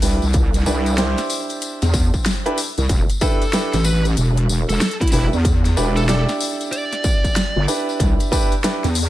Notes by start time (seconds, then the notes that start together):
0.02 C2 D4 E4 G4 B4, open hi-hat, tambourine
0.22 C2, tambourine
0.33 kick, closed hi-hat, tambourine
0.54 snare, closed hi-hat, tambourine
0.57 snare
0.60 snare
0.63 D4 G4, snare
0.66 C2 E4 B4, snare, tambourine
0.86 closed hi-hat, tambourine
0.98 D4 E4 G4 C5, snare, closed hi-hat, tambourine
1.18 snare, closed hi-hat, tambourine
1.30 open hi-hat, tambourine
1.49 closed hi-hat, tambourine
1.62 closed hi-hat, tambourine
1.82 E2, snare, closed hi-hat, tambourine
1.94 kick, tambourine
2.14 kick, tambourine
2.26 snare, closed hi-hat, tambourine
2.46 D4 E4 G4 B4, closed hi-hat
2.58 open hi-hat, tambourine
2.78 C2, closed hi-hat, tambourine
2.89 E1, kick, closed hi-hat, tambourine
3.10 closed hi-hat, tambourine
3.21 D4 E4 G4 A4 B4, kick, tambourine
3.42 closed hi-hat, tambourine
3.53 D4 E4 G4 B4, snare, closed hi-hat, tambourine
3.73 A1, snare, closed hi-hat, tambourine
3.84 B4, tambourine
4.05 closed hi-hat, tambourine
4.17 E1, closed hi-hat, tambourine
4.37 closed hi-hat
4.49 E1, tambourine
4.69 E1 A4, closed hi-hat, tambourine
4.81 A4, snare, closed hi-hat, tambourine
4.91 closed hi-hat
5.01 E4, kick, snare, closed hi-hat
5.08 closed hi-hat
5.12 E1 D4 E4 G4 B4, open hi-hat, tambourine
5.33 E2, tambourine
5.45 kick, closed hi-hat, tambourine
5.65 snare, closed hi-hat, tambourine
5.77 E1 D4 E4 G4 B4, snare, tambourine
5.96 A4, closed hi-hat, tambourine
6.08 D4 E4 G4 A4 D5, snare, closed hi-hat, tambourine
6.29 snare, closed hi-hat, tambourine
6.40 open hi-hat, tambourine
6.61 closed hi-hat, tambourine
6.72 D5, closed hi-hat, tambourine
6.93 snare, closed hi-hat
7.04 kick, tambourine
7.24 kick, closed hi-hat, tambourine
7.36 snare, closed hi-hat, tambourine
7.56 G1
7.68 D4 E4 G4 B4, open hi-hat, tambourine
7.89 tambourine
8.00 C2, kick, closed hi-hat, tambourine
8.20 closed hi-hat, tambourine
8.32 D4 E4 G4 B4, kick, tambourine
8.52 closed hi-hat, tambourine
8.64 D4 E4 G4 B4, snare, closed hi-hat, tambourine
8.84 E2, snare, closed hi-hat, tambourine
8.95 open hi-hat, tambourine